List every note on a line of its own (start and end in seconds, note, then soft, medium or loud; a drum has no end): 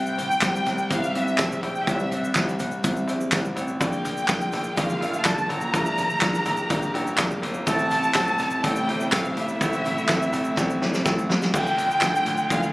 0.00 0.29 C2 loud
0.00 0.18 C3 medium
0.00 0.38 C3 medium
0.00 0.18 G3 medium
0.00 0.18 C4 loud
0.00 0.28 C4 medium
0.00 0.18 E4 loud
0.00 0.28 E4 medium
0.00 0.28 G4 medium
0.00 0.16 C5 loud
0.00 0.28 C5 medium
0.00 0.28 E5 medium
0.00 0.87 G5 loud
0.06 shaker medium
0.17 0.41 C4 soft
0.17 0.42 E4 medium
0.17 0.42 C5 medium
0.17 closed hi-hat medium
0.17 floor tom medium
0.17 shaker soft
0.31 shaker medium
0.41 0.62 C2 loud
0.41 0.66 G3 medium
0.41 0.80 C4 medium
0.41 0.67 C4 medium
0.41 0.80 E4 medium
0.41 0.80 G4 medium
0.41 0.80 C5 medium
0.41 0.65 C5 medium
0.41 0.80 D5 medium
0.41 kick loud
0.41 snare loud
0.41 clap medium
0.41 closed hi-hat medium
0.41 shaker medium
0.56 shaker medium
0.66 0.86 C2 loud
0.66 0.90 C4 soft
0.66 0.90 E4 medium
0.66 0.90 C5 medium
0.66 snare soft
0.66 closed hi-hat medium
0.66 floor tom medium
0.66 shaker medium
0.78 shaker soft
0.90 1.10 C2 loud
0.90 1.15 C3 medium
0.90 1.15 G3 loud
0.90 1.09 C4 medium
0.90 1.15 C4 loud
0.90 1.09 E4 medium
0.90 1.14 E4 loud
0.90 1.09 G4 medium
0.90 1.09 C5 medium
0.90 1.13 C5 loud
0.90 1.09 E5 medium
0.90 1.15 F5 loud
0.90 kick loud
0.90 closed hi-hat loud
0.90 shaker medium
1.04 shaker medium
1.14 1.35 C2 medium
1.14 1.34 C4 medium
1.14 1.38 C4 medium
1.14 1.34 E4 medium
1.14 1.39 E4 medium
1.14 1.34 G4 medium
1.14 1.38 C5 medium
1.14 1.34 C5 medium
1.14 1.63 E5 loud
1.14 1.34 E5 medium
1.14 closed hi-hat medium
1.28 shaker medium
1.38 1.59 A#1 medium
1.38 1.63 G3 medium
1.38 1.77 C4 medium
1.38 1.77 E4 medium
1.38 1.63 E4 medium
1.38 1.77 G4 medium
1.38 1.77 C5 medium
1.38 1.77 G5 medium
1.38 kick loud
1.38 snare loud
1.38 clap loud
1.38 closed hi-hat loud
1.38 shaker medium
1.51 floor tom medium
1.51 shaker soft
1.63 1.83 A#1 medium
1.63 2.32 C3 medium
1.63 1.86 C4 medium
1.63 1.87 E4 medium
1.63 1.87 C5 medium
1.63 1.86 G5 loud
1.63 closed hi-hat medium
1.63 floor tom medium
1.75 shaker soft
1.87 2.27 C2 loud
1.87 2.11 C3 medium
1.87 2.11 G3 medium
1.87 2.25 C4 medium
1.87 2.12 C4 medium
1.87 2.25 E4 medium
1.87 2.11 E4 medium
1.87 2.25 G4 medium
1.87 2.25 C5 medium
1.87 2.10 C5 loud
1.87 1.93 C#5 medium
1.87 2.36 E5 medium
1.87 kick loud
1.87 closed hi-hat medium
1.87 shaker medium
1.93 2.28 D5 loud
1.99 shaker medium
2.11 2.36 C4 medium
2.11 2.36 E4 medium
2.11 2.36 C5 medium
2.11 closed hi-hat medium
2.11 floor tom medium
2.11 shaker medium
2.24 shaker medium
2.35 2.56 C2 loud
2.35 2.60 G3 medium
2.35 2.74 C4 medium
2.35 2.60 C4 medium
2.35 2.74 E4 medium
2.35 2.60 E4 medium
2.35 2.74 G4 medium
2.35 2.74 C5 medium
2.35 2.59 C5 medium
2.35 2.74 D5 medium
2.35 kick loud
2.35 snare loud
2.35 clap medium
2.35 closed hi-hat medium
2.35 shaker medium
2.49 shaker medium
2.59 2.79 C2 medium
2.59 2.84 C4 soft
2.59 2.85 E4 medium
2.59 2.84 C5 medium
2.59 closed hi-hat medium
2.59 floor tom medium
2.59 shaker medium
2.71 shaker soft
2.84 3.04 C2 loud
2.84 3.08 C3 medium
2.84 3.09 G3 loud
2.84 3.03 C4 medium
2.84 3.09 C4 loud
2.84 3.03 E4 medium
2.84 3.08 E4 loud
2.84 3.03 G4 medium
2.84 3.03 C5 medium
2.84 3.07 C5 loud
2.84 3.03 E5 loud
2.84 kick loud
2.84 closed hi-hat loud
2.84 shaker medium
2.96 shaker medium
3.08 3.28 A#1 medium
3.08 3.27 C4 medium
3.08 3.33 C4 soft
3.08 3.27 E4 medium
3.08 3.33 E4 medium
3.08 3.27 G4 medium
3.08 3.27 C5 medium
3.08 3.33 C5 medium
3.08 3.27 E5 medium
3.08 closed hi-hat medium
3.08 shaker medium
3.21 shaker medium
3.32 3.52 C2 medium
3.32 3.57 G3 medium
3.32 3.70 C4 medium
3.32 3.70 E4 medium
3.32 3.70 G4 medium
3.32 3.70 C5 medium
3.32 3.70 D5 loud
3.32 kick loud
3.32 snare loud
3.32 clap loud
3.32 closed hi-hat loud
3.32 shaker medium
3.45 floor tom medium
3.45 shaker soft
3.56 3.76 A1 medium
3.56 3.81 C4 medium
3.56 3.81 E4 medium
3.56 3.81 C5 medium
3.56 closed hi-hat medium
3.56 floor tom medium
3.56 shaker medium
3.68 shaker soft
3.80 4.20 A#1 loud
3.80 4.05 A#2 medium
3.80 4.49 A#2 medium
3.80 7.63 D3 medium
3.80 4.05 D3 medium
3.80 4.05 F3 medium
3.80 7.63 A#3 medium
3.80 4.05 A#3 medium
3.80 4.18 D4 medium
3.80 4.04 D4 medium
3.80 5.72 F4 medium
3.80 4.18 F4 medium
3.80 4.18 A#4 medium
3.80 4.03 A#4 medium
3.80 4.19 D5 medium
3.80 4.18 F5 loud
3.80 4.74 G5 loud
3.80 kick loud
3.80 closed hi-hat medium
3.80 shaker medium
3.92 shaker medium
4.05 4.27 F3 medium
4.05 4.29 A#3 medium
4.05 4.29 D4 medium
4.05 4.29 A#4 medium
4.05 closed hi-hat medium
4.05 floor tom medium
4.05 shaker medium
4.17 shaker medium
4.28 4.49 A#1 medium
4.28 4.53 F3 medium
4.28 4.54 A#3 medium
4.28 4.66 D4 medium
4.28 4.53 D4 medium
4.28 4.67 F4 medium
4.28 4.67 A#4 medium
4.28 4.52 A#4 medium
4.28 4.67 D5 medium
4.28 4.67 F5 medium
4.28 kick loud
4.28 snare loud
4.28 clap medium
4.28 closed hi-hat medium
4.28 shaker medium
4.41 shaker medium
4.52 4.73 A#1 medium
4.52 4.77 F3 soft
4.52 4.77 A#3 medium
4.52 4.78 D4 medium
4.52 4.77 A#4 medium
4.52 snare soft
4.52 closed hi-hat medium
4.52 floor tom medium
4.52 shaker soft
4.64 shaker soft
4.77 4.97 A#1 loud
4.77 5.01 A#2 medium
4.77 5.02 D3 medium
4.77 5.02 F3 medium
4.77 5.02 A#3 loud
4.77 4.96 D4 medium
4.77 5.01 D4 loud
4.77 4.96 F4 medium
4.77 4.96 A#4 medium
4.77 5.00 A#4 loud
4.77 4.96 D5 medium
4.77 4.96 F5 medium
4.77 5.26 F5 loud
4.77 kick loud
4.77 closed hi-hat loud
4.77 shaker medium
4.89 shaker soft
5.00 5.21 A1 medium
5.00 5.24 F3 medium
5.00 5.25 A#3 medium
5.00 5.20 D4 medium
5.00 5.25 D4 medium
5.00 5.20 F4 medium
5.00 5.25 A#4 medium
5.00 5.20 A#4 medium
5.00 5.20 D5 medium
5.00 5.20 E5 medium
5.00 closed hi-hat medium
5.14 shaker medium
5.25 5.45 A#1 medium
5.25 5.49 F3 medium
5.25 5.50 A#3 medium
5.25 5.63 D4 medium
5.25 5.49 D4 medium
5.25 5.63 F4 medium
5.25 5.63 A#4 medium
5.25 5.48 A#4 medium
5.25 5.63 D5 medium
5.25 5.63 F5 medium
5.25 5.49 A5 loud
5.25 kick loud
5.25 snare loud
5.25 clap loud
5.25 closed hi-hat loud
5.25 shaker medium
5.38 floor tom medium
5.38 shaker soft
5.49 5.69 A1 loud
5.49 5.73 F3 medium
5.49 5.73 A#3 medium
5.49 5.73 D4 medium
5.49 5.73 A#4 medium
5.49 7.43 A#5 loud
5.49 closed hi-hat medium
5.49 floor tom medium
5.61 shaker soft
5.73 6.13 A#1 loud
5.73 5.98 A#2 medium
5.73 6.42 A#2 medium
5.73 5.98 D3 medium
5.73 5.98 F3 medium
5.73 5.98 A#3 medium
5.73 6.12 D4 medium
5.73 5.98 D4 medium
5.73 6.11 F4 medium
5.73 7.65 G4 medium
5.73 6.12 A#4 medium
5.73 5.97 A#4 loud
5.73 6.12 D5 medium
5.73 5.80 E5 medium
5.73 kick loud
5.73 closed hi-hat medium
5.73 shaker medium
5.80 6.14 F5 loud
5.86 shaker medium
5.98 6.21 F3 medium
5.98 6.22 A#3 medium
5.98 6.23 D4 medium
5.98 6.22 A#4 medium
5.98 closed hi-hat medium
5.98 floor tom medium
5.98 shaker medium
6.10 shaker medium
6.21 6.42 A#1 loud
6.21 6.46 F3 medium
6.21 6.46 A#3 medium
6.21 6.60 D4 medium
6.21 6.46 D4 medium
6.21 6.60 F4 medium
6.21 6.60 A#4 medium
6.21 6.60 D5 medium
6.21 6.60 F5 loud
6.21 kick loud
6.21 snare loud
6.21 clap medium
6.21 closed hi-hat medium
6.21 shaker medium
6.35 shaker medium
6.46 6.66 A#1 loud
6.46 6.69 F3 medium
6.46 6.69 A#3 medium
6.46 6.70 D4 medium
6.46 6.70 A#4 medium
6.46 closed hi-hat medium
6.46 floor tom medium
6.46 shaker medium
6.57 shaker medium
6.70 6.90 A#1 loud
6.70 6.94 A#2 loud
6.70 6.95 D3 loud
6.70 6.95 F3 medium
6.70 6.94 A#3 loud
6.70 6.89 D4 medium
6.70 6.94 D4 loud
6.70 6.89 F4 medium
6.70 6.89 A#4 medium
6.70 6.93 A#4 loud
6.70 6.89 D5 medium
6.70 6.89 F5 loud
6.70 kick loud
6.70 closed hi-hat loud
6.70 shaker medium
6.82 shaker medium
6.94 7.14 A1 loud
6.94 7.17 F3 soft
6.94 7.18 A#3 medium
6.94 7.13 D4 medium
6.94 7.19 D4 medium
6.94 7.13 F4 medium
6.94 7.18 A#4 medium
6.94 7.13 A#4 medium
6.94 7.13 D5 medium
6.94 7.13 G5 medium
6.94 closed hi-hat medium
7.07 shaker medium
7.17 7.39 A#1 loud
7.17 7.43 F3 medium
7.17 7.43 A#3 medium
7.17 7.56 D4 loud
7.17 7.56 F4 medium
7.17 7.56 A#4 medium
7.17 7.42 A#4 medium
7.17 7.56 D5 medium
7.17 7.56 F5 loud
7.17 kick loud
7.17 snare loud
7.17 clap loud
7.17 closed hi-hat loud
7.17 shaker medium
7.31 floor tom medium
7.31 shaker medium
7.42 7.62 G1 loud
7.42 7.67 F3 medium
7.42 7.68 A#3 medium
7.42 7.68 D4 medium
7.42 7.67 A#4 medium
7.42 closed hi-hat medium
7.42 floor tom medium
7.54 shaker soft
7.66 8.07 A1 loud
7.66 7.91 A2 medium
7.66 8.36 A2 medium
7.66 11.49 C3 medium
7.66 7.92 E3 medium
7.66 11.49 A3 medium
7.66 7.91 A3 loud
7.66 8.05 C4 medium
7.66 7.91 C4 loud
7.66 11.50 E4 medium
7.66 8.05 E4 medium
7.66 7.91 E4 loud
7.66 8.05 A4 medium
7.66 7.90 A4 loud
7.66 8.05 C5 medium
7.66 8.05 E5 loud
7.66 8.60 A5 loud
7.66 kick loud
7.66 closed hi-hat medium
7.66 shaker medium
7.79 shaker medium
7.91 8.13 A3 medium
7.91 8.14 C4 medium
7.91 8.15 E4 medium
7.91 8.15 A4 medium
7.91 closed hi-hat medium
7.91 floor tom medium
7.91 shaker medium
8.03 shaker medium
8.14 8.35 A1 loud
8.14 8.39 A3 medium
8.14 8.53 C4 medium
8.14 8.53 E4 medium
8.14 8.53 A4 medium
8.14 8.53 C5 medium
8.14 8.53 G5 medium
8.14 kick loud
8.14 snare loud
8.14 clap medium
8.14 closed hi-hat medium
8.14 shaker medium
8.27 shaker medium
8.38 8.59 A1 medium
8.38 8.62 A3 medium
8.38 8.63 C4 soft
8.38 8.63 E4 medium
8.38 8.63 A4 medium
8.38 snare soft
8.38 closed hi-hat medium
8.38 floor tom medium
8.38 shaker medium
8.50 shaker soft
8.63 8.84 A1 loud
8.63 8.88 A2 loud
8.63 8.88 E3 loud
8.63 8.88 A3 loud
8.63 8.83 C4 medium
8.63 8.88 C4 loud
8.63 8.82 E4 medium
8.63 8.87 E4 loud
8.63 8.83 A4 medium
8.63 8.87 A4 loud
8.63 8.83 C5 medium
8.63 8.83 D5 medium
8.63 9.13 G5 loud
8.63 kick loud
8.63 closed hi-hat loud
8.63 shaker medium
8.76 shaker medium
8.88 9.08 G1 loud
8.88 9.10 A3 medium
8.88 9.07 C4 medium
8.88 9.11 C4 medium
8.88 9.07 E4 medium
8.88 9.12 E4 medium
8.88 9.12 A4 medium
8.88 9.07 A4 medium
8.88 9.07 C5 medium
8.88 9.07 E5 medium
8.88 closed hi-hat medium
9.00 shaker medium
9.12 9.32 A1 loud
9.12 9.50 C4 medium
9.12 9.35 C4 medium
9.12 9.50 E4 medium
9.12 9.35 E4 medium
9.12 9.50 A4 medium
9.12 9.18 A#4 medium
9.12 9.35 F5 medium
9.12 9.50 G5 medium
9.12 kick loud
9.12 snare loud
9.12 clap loud
9.12 closed hi-hat loud
9.12 shaker medium
9.18 9.53 C5 medium
9.25 floor tom medium
9.25 shaker medium
9.35 9.56 G1 medium
9.35 9.59 A3 medium
9.35 9.60 C4 medium
9.35 9.60 E4 medium
9.35 9.60 A4 medium
9.35 11.06 E5 medium
9.35 closed hi-hat medium
9.35 floor tom medium
9.48 shaker soft
9.60 10.00 A1 loud
9.60 9.84 A2 medium
9.60 10.29 A2 medium
9.60 9.85 E3 medium
9.60 9.85 A3 medium
9.60 9.98 C4 medium
9.60 9.85 C4 medium
9.60 9.98 E4 medium
9.60 9.84 E4 loud
9.60 9.98 A4 medium
9.60 9.98 C5 medium
9.60 9.98 E5 loud
9.60 kick loud
9.60 closed hi-hat medium
9.60 shaker medium
9.73 shaker medium
9.85 10.07 A3 medium
9.85 10.08 C4 medium
9.85 10.09 E4 medium
9.85 10.09 A4 medium
9.85 closed hi-hat medium
9.85 floor tom medium
9.85 shaker medium
9.98 shaker medium
10.08 10.29 A1 loud
10.08 10.33 A3 medium
10.08 10.46 C4 medium
10.08 10.47 E4 medium
10.08 10.46 A4 medium
10.08 10.31 A4 medium
10.08 10.47 C5 medium
10.08 10.47 E5 loud
10.08 kick loud
10.08 snare loud
10.08 clap medium
10.08 closed hi-hat medium
10.08 shaker medium
10.22 shaker medium
10.33 10.53 A1 loud
10.33 10.57 A3 medium
10.33 10.57 C4 medium
10.33 10.57 E4 medium
10.33 closed hi-hat medium
10.33 floor tom medium
10.33 shaker medium
10.44 shaker soft
10.57 10.77 A1 loud
10.57 10.81 A2 medium
10.57 10.81 E3 loud
10.57 10.82 A3 loud
10.57 10.76 C4 medium
10.57 10.76 E4 medium
10.57 10.81 E4 loud
10.57 10.76 A4 medium
10.57 10.80 A4 loud
10.57 10.76 C5 medium
10.57 10.76 D5 loud
10.57 kick loud
10.57 snare medium
10.57 shaker medium
10.70 shaker medium
10.81 11.06 G1 medium
10.81 11.04 A3 soft
10.81 11.00 C4 medium
10.81 11.05 C4 medium
10.81 11.00 E4 medium
10.81 11.05 E4 medium
10.81 11.05 A4 medium
10.81 11.00 A4 medium
10.81 11.00 C5 medium
10.81 11.00 D5 medium
10.81 snare medium
10.94 snare medium
10.94 shaker medium
11.05 11.25 A1 medium
11.05 11.29 A3 medium
11.05 11.43 C4 medium
11.05 11.30 C4 medium
11.05 11.43 E4 medium
11.05 11.43 A4 medium
11.05 11.28 A4 medium
11.05 11.43 C5 medium
11.05 11.43 G5 loud
11.05 kick loud
11.05 snare loud
11.05 shaker medium
11.19 shaker soft
11.29 11.49 C2 medium
11.29 11.53 A3 medium
11.29 11.54 C4 medium
11.29 11.54 E4 medium
11.29 11.53 A4 medium
11.29 snare loud
11.42 snare loud
11.42 shaker soft
11.53 11.93 D2 loud
11.53 11.78 D3 medium
11.53 12.73 D3 medium
11.53 12.23 D3 medium
11.53 11.78 F3 medium
11.53 12.73 A3 medium
11.53 11.78 D4 loud
11.53 11.92 D4 medium
11.53 12.73 F4 medium
11.53 11.92 F4 medium
11.53 11.77 F4 medium
11.53 11.92 A4 medium
11.53 11.76 A4 loud
11.53 11.92 D5 medium
11.53 11.92 F5 loud
11.53 12.48 G5 loud
11.53 kick loud
11.53 crash loud
11.53 shaker medium
11.67 shaker medium
11.77 12.02 D4 medium
11.77 12.02 F4 medium
11.77 12.02 A4 medium
11.77 closed hi-hat medium
11.77 floor tom medium
11.77 shaker medium
11.91 shaker medium
12.01 12.22 D2 loud
12.01 12.26 F3 medium
12.01 12.40 D4 medium
12.01 12.26 D4 medium
12.01 12.40 F4 medium
12.01 12.25 F4 medium
12.01 12.40 A4 medium
12.01 12.24 A4 medium
12.01 12.40 D5 medium
12.01 12.40 F5 medium
12.01 kick loud
12.01 snare loud
12.01 clap medium
12.01 closed hi-hat medium
12.01 shaker medium
12.16 shaker medium
12.25 12.46 D2 loud
12.25 12.50 D4 soft
12.25 12.50 F4 medium
12.25 12.50 A4 medium
12.25 snare soft
12.25 closed hi-hat medium
12.25 floor tom medium
12.25 shaker medium
12.37 shaker soft
12.50 12.70 D2 loud
12.50 12.73 D3 loud
12.50 12.73 F3 medium
12.50 12.73 D4 loud
12.50 12.70 D4 medium
12.50 12.73 F4 loud
12.50 12.70 F4 medium
12.50 12.72 A4 loud
12.50 12.70 A4 medium
12.50 12.70 D5 medium
12.50 12.70 F5 medium
12.50 12.68 F5 loud
12.50 kick loud
12.50 closed hi-hat loud
12.50 shaker medium
12.63 shaker medium
12.69 12.73 F5 medium